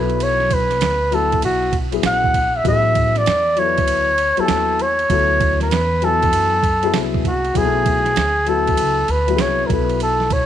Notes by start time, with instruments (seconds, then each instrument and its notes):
Already playing: upright bass B1, upright piano F#3 B3 E4 A4, flugelhorn B4
0.10 ride
0.20 flugelhorn C#5, ride
0.40 snare
0.51 flugelhorn B4, kick, ride
0.70 snare, ride
0.81 upright bass D2, snare, hi-hat pedal, ride
1.11 upright piano F#3 B3 E4 F#4, flugelhorn A4, ride
1.32 kick, ride
1.42 upright bass B1, flugelhorn F#4, ride
1.72 kick, ride
1.92 upright piano F#3 B3 E4 G#4, ride
2.03 upright bass A#1, flugelhorn F#5, snare, hi-hat pedal, ride
2.24 kick
2.34 kick, ride
2.57 flugelhorn E5
2.64 upright bass A1, upright piano F#3 B3 E4 G4, kick, ride
2.68 upright piano G#4, flugelhorn E5
2.95 kick, ride
3.15 flugelhorn D5, snare, ride
3.26 upright bass E2, snare, hi-hat pedal, ride
3.56 upright piano F#3 B3 E4 A4, flugelhorn C#5, ride
3.64 upright piano B4
3.78 kick, ride
3.88 upright bass D2, ride
4.18 ride
4.37 upright piano F#3 B3 E4 G4, flugelhorn A4, muted upright bass stroke, ride
4.45 upright piano G#5, snare, hi-hat pedal, ride
4.49 upright bass D#2
4.79 flugelhorn C#5, ride
4.99 ride
5.10 upright bass D2, upright piano F#3 B3 E4 A4, kick, ride
5.41 kick, ride
5.61 flugelhorn B4, snare, ride
5.71 upright bass E2, snare, hi-hat pedal, ride
6.02 upright piano F#3 B3 E4 G#5, flugelhorn A4, ride
6.23 kick, ride
6.33 upright bass F#2, ride
6.63 kick, ride
6.83 upright piano F#3 B3 E4 G#4, ride
6.94 upright bass C2, snare, hi-hat pedal, ride
7.14 kick
7.25 flugelhorn F#4, kick, ride
7.45 ride
7.54 upright bass B1, upright piano F#3 B3 E4 G#4, flugelhorn G#4, kick, ride
7.63 upright piano A3
7.86 kick, ride
8.06 snare, ride
8.16 upright bass D2, snare, hi-hat pedal, ride
8.46 upright piano F#3 B3 E4 F#4, flugelhorn A4, ride
8.67 kick, ride
8.77 upright bass C#2, ride
9.08 upright bass D2, flugelhorn B4, ride
9.27 upright piano F#3 B3 E4 F#4, ride
9.35 upright bass C2, upright piano G#4, snare, hi-hat pedal, ride
9.41 flugelhorn C#5
9.67 upright bass B1, upright piano F#3 B3 E4 A4, flugelhorn A#4, kick, ride
9.72 flugelhorn B4
9.89 ride
10.00 flugelhorn A4, ride
10.20 snare
10.30 flugelhorn C#5, kick, ride